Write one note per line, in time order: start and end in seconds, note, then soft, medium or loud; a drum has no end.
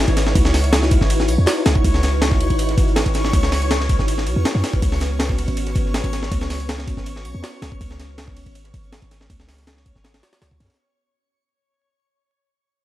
0.00 4.79 D#4 medium
0.00 4.79 E4 medium
0.00 10.75 F#4 medium
0.00 10.75 B4 medium
0.00 10.80 C#5 medium
0.00 10.80 C#6 medium
0.08 0.34 G#1 medium
0.08 ride soft
0.17 snare soft
0.17 closed hi-hat medium
0.17 ride medium
0.26 snare soft
0.35 0.99 C#2 loud
0.35 kick loud
0.35 closed hi-hat medium
0.35 ride medium
0.45 snare medium
0.45 closed hi-hat soft
0.54 snare soft
0.54 closed hi-hat medium
0.54 open hi-hat medium
0.64 ride soft
0.72 snare loud
0.72 closed hi-hat medium
0.72 ride medium
0.82 snare soft
0.91 kick medium
0.91 closed hi-hat medium
0.91 ride medium
1.01 1.30 G#1 medium
1.01 snare soft
1.10 closed hi-hat medium
1.10 ride medium
1.20 snare soft
1.28 1.37 B1 loud
1.28 closed hi-hat medium
1.28 ride medium
1.38 1.46 E2 medium
1.46 snare loud
1.46 closed hi-hat medium
1.46 ride medium
1.56 snare soft
1.66 1.75 C#2 medium
1.66 snare loud
1.66 closed hi-hat medium
1.66 ride medium
1.76 kick medium
1.76 closed hi-hat soft
1.85 2.48 C#2 loud
1.85 kick loud
1.85 closed hi-hat medium
1.85 ride medium
1.94 snare soft
2.03 snare soft
2.03 closed hi-hat medium
2.03 ride medium
2.21 snare loud
2.21 closed hi-hat medium
2.21 ride medium
2.31 kick medium
2.31 snare soft
2.40 open hi-hat medium
2.40 ride medium
2.50 2.76 G#1 medium
2.50 ride soft
2.59 closed hi-hat medium
2.59 ride medium
2.69 snare soft
2.69 ride soft
2.78 3.04 G#1 medium
2.78 kick medium
2.78 closed hi-hat medium
2.78 ride medium
2.88 closed hi-hat soft
2.96 snare loud
2.96 closed hi-hat medium
2.96 ride medium
3.06 3.32 G#1 medium
3.06 ride soft
3.14 snare soft
3.14 closed hi-hat medium
3.14 ride medium
3.25 snare soft
3.33 3.97 C#2 loud
3.33 kick loud
3.33 closed hi-hat medium
3.33 ride medium
3.43 snare medium
3.43 closed hi-hat soft
3.52 snare soft
3.52 closed hi-hat medium
3.52 open hi-hat medium
3.62 ride soft
3.71 snare loud
3.71 closed hi-hat medium
3.71 ride medium
3.80 snare soft
3.89 kick medium
3.89 closed hi-hat medium
3.89 ride medium
3.99 4.28 G#1 medium
3.99 snare soft
4.08 closed hi-hat medium
4.08 ride medium
4.18 snare soft
4.27 4.35 B1 medium
4.27 closed hi-hat medium
4.27 ride medium
4.36 4.44 E2 medium
4.45 snare loud
4.45 closed hi-hat medium
4.45 ride medium
4.55 4.63 F#2 loud
4.55 snare soft
4.64 snare medium
4.64 closed hi-hat medium
4.64 ride medium
4.72 kick medium
4.72 closed hi-hat soft
4.82 5.46 C#2 medium
4.82 10.75 B3 medium
4.82 10.75 C#4 medium
4.82 kick loud
4.82 closed hi-hat medium
4.82 ride medium
4.92 snare soft
5.00 snare soft
5.00 closed hi-hat medium
5.00 ride medium
5.19 snare loud
5.19 closed hi-hat medium
5.19 ride medium
5.29 kick medium
5.29 snare soft
5.38 open hi-hat medium
5.38 ride medium
5.48 5.74 G#1 medium
5.48 ride soft
5.57 closed hi-hat medium
5.57 ride medium
5.67 snare soft
5.67 ride soft
5.75 6.02 G#1 medium
5.75 kick medium
5.75 closed hi-hat medium
5.75 ride medium
5.85 snare soft
5.94 snare loud
5.94 closed hi-hat medium
5.94 ride medium
6.04 6.30 G#1 medium
6.04 ride soft
6.13 snare soft
6.13 closed hi-hat medium
6.13 ride medium
6.22 snare soft
6.32 6.96 C#2 loud
6.32 kick loud
6.32 closed hi-hat medium
6.32 ride medium
6.41 snare medium
6.41 closed hi-hat soft
6.50 snare soft
6.50 closed hi-hat medium
6.50 open hi-hat medium
6.60 ride soft
6.69 snare loud
6.69 closed hi-hat medium
6.69 ride medium
6.79 snare soft
6.87 kick medium
6.87 closed hi-hat medium
6.87 ride medium
6.97 7.26 G#1 medium
6.97 snare soft
7.06 closed hi-hat medium
7.06 ride medium
7.16 snare soft
7.25 7.33 B1 medium
7.25 closed hi-hat medium
7.25 ride medium
7.35 7.43 E2 medium
7.43 snare loud
7.43 closed hi-hat medium
7.43 ride medium
7.53 snare soft
7.62 7.71 C#2 medium
7.62 snare loud
7.62 closed hi-hat medium
7.62 ride medium
7.72 kick medium
7.72 closed hi-hat soft
7.81 8.45 C#2 loud
7.81 kick loud
7.81 closed hi-hat medium
7.81 ride medium
7.90 snare soft
7.99 snare soft
7.99 closed hi-hat medium
7.99 ride medium
8.18 snare loud
8.18 closed hi-hat medium
8.18 ride medium
8.28 kick medium
8.28 snare soft
8.36 open hi-hat medium
8.36 ride medium
8.46 8.72 G#1 medium
8.46 ride soft
8.55 closed hi-hat medium
8.55 ride medium
8.64 snare soft
8.64 ride soft
8.74 9.01 G#1 medium
8.74 kick medium
8.74 closed hi-hat medium
8.74 ride medium
8.84 closed hi-hat soft
8.93 snare loud
8.93 closed hi-hat medium
8.93 ride medium
9.02 9.28 G#1 medium
9.02 ride soft
9.11 snare soft
9.11 closed hi-hat medium
9.11 ride medium
9.20 snare soft
9.30 9.94 C#2 loud
9.30 kick loud
9.30 closed hi-hat medium
9.30 ride medium
9.40 snare medium
9.40 closed hi-hat soft
9.48 snare medium
9.48 snare soft
9.48 closed hi-hat medium
9.48 open hi-hat medium
9.53 snare medium
9.53 closed hi-hat medium
9.58 snare medium
9.58 closed hi-hat medium
9.58 ride soft
9.62 snare medium
9.62 closed hi-hat medium
9.67 snare loud
9.67 closed hi-hat medium
9.67 ride medium
9.77 snare soft
9.86 kick medium
9.86 closed hi-hat medium
9.86 ride medium
9.96 10.22 G#1 medium
9.96 snare soft
10.04 snare loud
10.04 closed hi-hat medium
10.04 ride medium
10.13 snare soft
10.13 snare loud
10.13 ride medium
10.22 snare medium
10.22 closed hi-hat medium
10.22 ride medium
10.33 snare medium
10.33 ride medium
10.42 10.50 C#2 medium
10.42 snare medium
10.42 snare loud
10.42 closed hi-hat medium
10.42 ride medium
10.51 kick medium
10.51 snare soft
10.60 10.69 F#2 medium
10.60 snare medium
10.60 closed hi-hat medium
10.60 ride medium
10.65 snare medium
10.65 closed hi-hat medium
10.70 snare medium
10.70 closed hi-hat medium
10.70 ride soft
10.74 snare medium
10.74 closed hi-hat medium